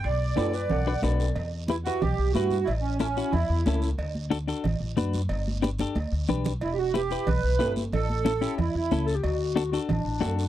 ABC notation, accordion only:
X:1
M:4/4
L:1/16
Q:1/4=183
K:D
V:1 name="Accordion"
d12 z4 | z4 E2 F2 G4 F4 | E2 C2 C4 E4 E3 z | z16 |
z16 | E3/2 G/2 F2 G4 B6 z2 | A8 E2 E4 z2 | z16 |]